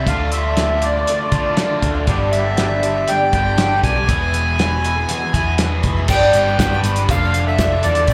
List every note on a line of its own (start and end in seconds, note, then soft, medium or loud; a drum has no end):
0.06 1.03 D2 medium
0.06 0.31 D3 medium
0.06 0.33 A3 medium
0.06 0.33 D4 medium
0.06 2.07 F4 medium
0.06 0.34 F4 medium
0.06 4.06 D5 medium
0.06 0.31 F5 medium
0.06 2.07 A5 medium
0.06 4.05 D6 medium
0.06 kick loud
0.06 closed hi-hat medium
0.32 0.57 D3 medium
0.32 0.57 A3 medium
0.32 0.58 D4 medium
0.32 0.58 F4 medium
0.32 0.84 E5 medium
0.32 closed hi-hat medium
0.57 0.82 D3 medium
0.57 0.83 A3 medium
0.57 0.83 D4 medium
0.57 0.84 F4 medium
0.57 snare medium
0.57 closed hi-hat medium
0.82 0.96 D3 medium
0.82 0.96 A3 medium
0.82 0.96 D4 medium
0.82 1.79 D5 medium
0.82 closed hi-hat medium
0.86 0.95 F4 medium
0.96 1.07 A3 soft
0.96 1.07 D4 soft
0.96 1.08 F4 medium
1.07 1.20 D3 medium
1.07 1.20 A3 medium
1.07 1.21 D4 medium
1.07 1.20 F4 medium
1.07 closed hi-hat medium
1.22 1.32 A3 soft
1.22 1.33 D4 soft
1.22 1.33 F4 medium
1.32 1.79 D3 medium
1.32 1.81 D3 medium
1.32 1.81 A3 medium
1.32 1.83 D4 medium
1.32 1.83 F4 medium
1.32 kick medium
1.32 closed hi-hat medium
1.56 2.06 D3 medium
1.56 2.06 A3 medium
1.56 2.07 D4 medium
1.56 2.08 F4 medium
1.56 snare loud
1.56 closed hi-hat medium
1.82 2.06 D2 medium
1.82 1.95 D3 medium
1.82 1.95 A3 medium
1.82 1.95 D4 medium
1.82 1.93 F4 medium
1.82 kick medium
1.82 closed hi-hat medium
1.94 2.08 A3 soft
1.94 2.08 D4 soft
1.94 2.07 F4 medium
2.07 3.05 G1 medium
2.07 2.34 G2 medium
2.07 2.33 D3 medium
2.07 2.33 G3 medium
2.07 2.33 B3 medium
2.07 2.34 D4 loud
2.07 4.07 G4 medium
2.07 2.34 G4 medium
2.07 6.05 B5 medium
2.07 kick loud
2.07 closed hi-hat medium
2.31 2.59 G3 medium
2.31 2.59 B3 medium
2.31 2.59 D4 medium
2.31 3.10 E5 medium
2.31 closed hi-hat medium
2.36 2.60 G4 medium
2.57 2.84 G2 medium
2.57 2.84 D3 medium
2.57 2.83 G3 medium
2.57 2.83 B3 medium
2.57 2.84 D4 medium
2.57 2.85 G4 medium
2.57 snare medium
2.57 closed hi-hat medium
2.83 2.96 G3 medium
2.83 2.96 B3 medium
2.83 2.96 D4 medium
2.83 2.94 G4 medium
2.83 closed hi-hat medium
2.95 3.08 G3 soft
2.95 3.09 B3 soft
2.95 3.09 D4 soft
2.95 3.08 G4 soft
3.08 3.21 G2 medium
3.08 3.21 D3 medium
3.08 3.21 G3 medium
3.08 3.22 B3 medium
3.08 3.21 D4 medium
3.08 3.20 G4 medium
3.08 3.32 G5 loud
3.08 closed hi-hat medium
3.21 3.32 G3 soft
3.21 3.33 B3 medium
3.21 3.34 D4 soft
3.21 3.34 G4 medium
3.33 3.80 G1 medium
3.33 3.56 G2 medium
3.33 3.57 D3 medium
3.33 3.82 G3 medium
3.33 3.84 B3 medium
3.33 3.83 D4 medium
3.33 3.84 G4 medium
3.33 3.80 G5 loud
3.33 kick medium
3.33 closed hi-hat medium
3.57 4.07 G2 medium
3.57 4.07 D3 medium
3.57 4.07 G3 medium
3.57 4.10 B3 medium
3.57 4.08 D4 medium
3.57 4.08 G4 medium
3.57 snare loud
3.57 closed hi-hat medium
3.83 4.07 B1 medium
3.83 3.96 G3 medium
3.83 3.96 B3 medium
3.83 3.95 D4 medium
3.83 3.95 G4 medium
3.83 5.55 G#5 loud
3.83 kick medium
3.83 snare soft
3.83 closed hi-hat medium
3.96 4.08 G3 soft
3.96 4.08 B3 soft
3.96 4.09 D4 soft
3.96 4.09 G4 soft
4.08 5.05 E1 medium
4.08 4.33 E2 medium
4.08 4.34 B2 medium
4.08 4.32 E3 medium
4.08 4.32 B3 medium
4.08 4.33 E4 medium
4.08 6.07 G#4 medium
4.08 4.34 G#4 medium
4.08 6.07 E5 medium
4.08 6.07 E6 medium
4.08 kick loud
4.08 closed hi-hat medium
4.33 4.57 E3 medium
4.33 4.58 B3 medium
4.33 4.58 E4 medium
4.33 4.59 G#4 medium
4.33 closed hi-hat medium
4.58 4.84 E2 medium
4.58 4.84 B2 medium
4.58 4.83 E3 medium
4.58 4.84 B3 medium
4.58 4.84 E4 medium
4.58 4.84 G#4 medium
4.58 snare loud
4.58 closed hi-hat medium
4.84 4.96 E3 medium
4.84 4.96 B3 medium
4.84 4.96 E4 medium
4.84 4.95 G#4 medium
4.84 closed hi-hat medium
4.96 5.08 E3 soft
4.96 5.09 B3 medium
4.96 5.09 E4 medium
4.96 5.09 G#4 medium
5.08 5.21 E2 medium
5.08 5.21 B2 medium
5.08 5.22 E3 medium
5.08 5.22 B3 medium
5.08 5.22 E4 loud
5.08 5.21 G#4 loud
5.08 closed hi-hat medium
5.23 5.34 E3 soft
5.23 5.34 B3 medium
5.23 5.35 E4 medium
5.23 5.35 G#4 medium
5.33 5.80 E2 loud
5.33 5.57 E2 medium
5.33 5.58 B2 medium
5.33 5.83 E3 medium
5.33 5.84 B3 medium
5.33 5.84 E4 medium
5.33 5.57 G#4 medium
5.33 kick medium
5.33 closed hi-hat medium
5.38 5.85 G#4 medium
5.58 6.07 E2 medium
5.58 6.08 B2 medium
5.58 6.08 E3 medium
5.58 6.08 B3 medium
5.58 6.09 E4 medium
5.58 6.09 G#4 medium
5.58 snare loud
5.58 closed hi-hat medium
5.83 6.07 F1 medium
5.83 5.97 E3 medium
5.83 5.97 B3 medium
5.83 5.96 E4 medium
5.83 5.95 G#4 medium
5.83 kick medium
5.83 closed hi-hat medium
5.97 6.09 E3 soft
5.97 6.10 B3 medium
5.97 6.09 E4 medium
5.97 6.09 G#4 medium
6.08 6.32 G1 medium
6.08 6.47 G2 medium
6.08 6.47 D3 medium
6.08 6.46 G3 medium
6.08 6.45 B3 medium
6.08 6.46 D4 medium
6.08 7.08 G4 medium
6.08 6.44 G4 medium
6.08 8.07 D5 medium
6.08 6.80 G5 loud
6.08 7.08 B5 medium
6.08 8.07 D6 medium
6.08 kick loud
6.08 crash loud
6.08 shaker medium
6.12 6.31 B4 medium
6.22 shaker soft
6.33 6.57 G1 medium
6.33 6.60 B3 medium
6.33 6.60 B4 medium
6.33 closed hi-hat medium
6.33 shaker medium
6.37 6.58 D4 medium
6.45 6.59 G3 soft
6.45 6.59 B3 soft
6.45 6.59 D4 soft
6.45 6.58 G4 medium
6.45 shaker soft
6.59 6.82 G1 medium
6.59 6.71 G2 medium
6.59 6.71 D3 medium
6.59 6.71 G3 medium
6.59 6.70 B3 medium
6.59 6.69 D4 medium
6.59 6.69 G4 medium
6.59 6.83 B4 medium
6.59 kick loud
6.59 snare loud
6.59 closed hi-hat medium
6.59 shaker medium
6.70 6.97 G3 soft
6.70 6.96 B3 soft
6.70 6.96 D4 medium
6.70 6.96 G4 medium
6.70 shaker soft
6.83 7.07 G1 medium
6.83 7.08 B3 medium
6.83 7.07 B4 medium
6.83 closed hi-hat medium
6.83 shaker medium
6.87 7.08 D4 medium
6.96 7.10 G3 soft
6.96 7.10 B3 soft
6.96 7.09 D4 soft
6.96 7.09 G4 soft
6.96 closed hi-hat medium
6.96 shaker soft
7.09 7.55 F1 medium
7.09 7.57 D3 medium
7.09 7.22 F3 medium
7.09 7.22 A3 medium
7.09 7.21 D4 medium
7.09 8.08 F4 medium
7.09 7.59 F4 loud
7.09 8.13 A4 medium
7.09 7.21 A4 medium
7.09 7.45 F5 loud
7.09 kick loud
7.09 closed hi-hat medium
7.09 shaker medium
7.22 7.33 A3 soft
7.22 7.34 D4 medium
7.22 7.34 A4 medium
7.22 shaker soft
7.34 7.46 F3 medium
7.34 7.47 A3 medium
7.34 7.47 D4 medium
7.34 7.46 A4 medium
7.34 closed hi-hat medium
7.34 shaker medium
7.47 7.61 A3 soft
7.47 7.60 D4 soft
7.47 7.59 A4 soft
7.47 7.85 E5 loud
7.47 shaker soft
7.58 7.82 F1 medium
7.58 8.07 D3 medium
7.58 7.84 F3 medium
7.58 7.84 F4 medium
7.58 kick loud
7.58 snare loud
7.58 closed hi-hat medium
7.58 shaker loud
7.62 7.85 A3 medium
7.62 7.85 D4 medium
7.62 7.86 A4 medium
7.83 8.07 E2 medium
7.83 7.97 F3 medium
7.83 7.97 A3 medium
7.83 8.08 F4 medium
7.83 8.07 A4 medium
7.83 8.07 D5 medium
7.83 closed hi-hat medium
7.83 shaker medium
7.87 7.98 D4 medium
7.87 7.98 A4 medium
7.95 closed hi-hat medium
7.95 shaker soft
7.99 8.11 A3 soft
7.99 8.11 D4 soft
7.99 8.10 A4 medium
8.07 8.13 A1 loud
8.07 8.13 A2 medium
8.07 8.13 A3 medium
8.07 8.13 C4 medium
8.07 8.13 E4 medium
8.07 8.13 D5 loud
8.07 kick loud
8.07 closed hi-hat medium
8.07 shaker medium